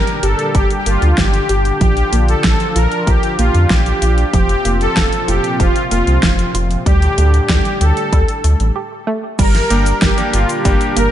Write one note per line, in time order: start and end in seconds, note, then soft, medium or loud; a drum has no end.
0.00 4.30 A#2 medium
0.00 4.30 D3 medium
0.00 0.21 G3 medium
0.00 1.78 G3 medium
0.00 4.30 D4 medium
0.00 1.78 G4 medium
0.00 0.25 A#4 loud
0.07 closed hi-hat soft
0.23 0.34 G1 loud
0.23 0.53 G4 medium
0.23 0.56 A4 loud
0.23 closed hi-hat medium
0.39 closed hi-hat soft
0.55 0.66 G1 medium
0.55 0.68 G3 loud
0.55 0.78 G4 loud
0.55 kick loud
0.55 closed hi-hat medium
0.70 closed hi-hat soft
0.79 0.86 G4 medium
0.86 0.97 G1 medium
0.86 1.09 A#3 medium
0.86 1.19 F4 medium
0.86 closed hi-hat medium
1.02 1.13 D2 medium
1.02 closed hi-hat soft
1.18 1.40 G1 loud
1.18 1.48 G3 medium
1.18 1.80 G4 loud
1.18 kick loud
1.18 snare loud
1.18 closed hi-hat medium
1.34 closed hi-hat soft
1.49 1.72 G1 medium
1.49 1.79 G4 medium
1.49 closed hi-hat medium
1.65 closed hi-hat soft
1.81 2.03 A#1 loud
1.81 4.31 F3 medium
1.81 1.95 F3 loud
1.81 6.82 F4 medium
1.81 2.25 G4 loud
1.81 kick loud
1.81 closed hi-hat medium
1.97 closed hi-hat soft
2.13 2.35 A#1 loud
2.13 2.35 A#3 medium
2.13 closed hi-hat medium
2.29 2.77 A4 loud
2.29 closed hi-hat soft
2.44 2.55 A#1 medium
2.44 2.74 F3 medium
2.44 kick loud
2.44 snare loud
2.44 closed hi-hat medium
2.60 closed hi-hat soft
2.76 2.87 A#1 loud
2.76 3.06 F4 medium
2.76 3.08 A#4 loud
2.76 closed hi-hat medium
2.92 closed hi-hat soft
3.07 3.18 A#1 medium
3.07 3.21 F3 loud
3.07 3.40 G4 loud
3.07 kick loud
3.07 closed hi-hat medium
3.23 closed hi-hat soft
3.39 3.50 A#1 medium
3.39 3.62 A#3 medium
3.39 3.71 F4 medium
3.39 closed hi-hat medium
3.55 3.66 F2 medium
3.55 closed hi-hat soft
3.70 3.93 A#1 loud
3.70 4.00 F3 medium
3.70 4.32 G4 loud
3.70 kick loud
3.70 snare loud
3.70 closed hi-hat medium
3.86 closed hi-hat soft
4.02 4.24 A#1 loud
4.02 4.32 F4 medium
4.02 closed hi-hat medium
4.18 closed hi-hat soft
4.33 4.56 F1 loud
4.33 6.84 A#2 medium
4.33 6.84 C3 medium
4.33 6.84 F3 medium
4.33 4.47 F3 loud
4.33 6.84 C4 medium
4.33 4.82 G4 loud
4.33 kick loud
4.33 closed hi-hat medium
4.49 closed hi-hat soft
4.65 4.87 F1 loud
4.65 4.88 A#3 medium
4.65 closed hi-hat medium
4.81 5.25 A4 loud
4.81 closed hi-hat soft
4.97 5.08 F1 medium
4.97 5.27 F3 medium
4.97 kick loud
4.97 snare loud
4.97 closed hi-hat medium
5.12 closed hi-hat soft
5.28 5.39 F1 loud
5.28 5.58 F4 medium
5.28 5.61 G4 medium
5.28 closed hi-hat medium
5.44 closed hi-hat soft
5.60 5.71 F1 medium
5.60 5.74 F3 loud
5.60 5.90 F4 loud
5.60 kick loud
5.60 closed hi-hat medium
5.76 closed hi-hat soft
5.91 6.03 F1 medium
5.91 6.14 A#3 medium
5.91 6.51 F4 medium
5.91 closed hi-hat medium
6.07 6.18 C2 medium
6.07 closed hi-hat soft
6.23 6.45 F1 loud
6.23 6.53 F3 medium
6.23 kick loud
6.23 snare loud
6.23 closed hi-hat medium
6.39 closed hi-hat soft
6.54 6.77 F1 loud
6.54 6.85 F4 medium
6.54 closed hi-hat medium
6.71 closed hi-hat soft
6.86 7.08 D2 loud
6.86 8.74 A2 medium
6.86 8.74 D3 medium
6.86 7.00 G3 loud
6.86 8.74 G3 medium
6.86 8.74 D4 medium
6.86 8.74 G4 medium
6.86 7.48 G4 loud
6.86 kick loud
6.86 closed hi-hat medium
7.02 closed hi-hat soft
7.18 7.40 D2 loud
7.18 7.41 A3 medium
7.18 closed hi-hat medium
7.34 closed hi-hat soft
7.49 7.60 D2 medium
7.49 7.79 G3 medium
7.49 7.82 G4 loud
7.49 kick loud
7.49 snare loud
7.49 closed hi-hat medium
7.65 closed hi-hat soft
7.81 7.92 D2 loud
7.81 8.11 G4 medium
7.81 8.72 A4 loud
7.81 closed hi-hat medium
7.97 closed hi-hat soft
8.13 8.24 D2 medium
8.13 8.26 G3 loud
8.13 kick loud
8.13 closed hi-hat medium
8.28 closed hi-hat soft
8.44 8.55 D2 medium
8.44 8.74 A3 medium
8.44 closed hi-hat medium
8.60 8.71 A1 medium
8.60 closed hi-hat soft
8.76 8.89 G4 medium
9.07 9.30 A3 loud
9.39 9.61 G1 loud
9.39 11.12 A#2 medium
9.39 11.12 D3 medium
9.39 9.53 G3 loud
9.39 11.12 G3 medium
9.39 11.12 D4 medium
9.39 11.12 G4 medium
9.39 10.04 A#4 loud
9.39 kick loud
9.39 closed hi-hat medium
9.39 crash loud
9.39 cabasa soft
9.55 snare soft
9.55 closed hi-hat soft
9.55 cabasa soft
9.70 9.93 G1 loud
9.70 9.93 A#3 medium
9.70 9.88 A#3 medium
9.70 9.88 D4 medium
9.70 9.88 G4 medium
9.70 closed hi-hat loud
9.86 closed hi-hat soft
9.86 cabasa medium
10.02 10.13 G1 medium
10.02 10.32 G3 medium
10.02 10.35 G4 loud
10.02 kick loud
10.02 snare loud
10.02 closed hi-hat medium
10.02 cabasa medium
10.18 10.61 A#3 medium
10.18 10.61 D4 medium
10.18 10.61 A#4 loud
10.18 closed hi-hat soft
10.18 cabasa soft
10.33 10.45 G1 loud
10.33 10.48 F4 medium
10.33 10.64 G4 medium
10.33 closed hi-hat medium
10.49 closed hi-hat soft
10.49 cabasa medium
10.65 10.76 G1 medium
10.65 10.79 G3 loud
10.65 10.94 A#3 medium
10.65 10.94 D4 medium
10.65 10.98 G4 loud
10.65 10.94 A#4 loud
10.65 kick loud
10.65 closed hi-hat medium
10.65 cabasa soft
10.81 closed hi-hat soft
10.81 cabasa soft
10.97 11.08 G1 medium
10.97 11.12 A#3 medium
10.97 11.12 A#4 loud
10.97 closed hi-hat loud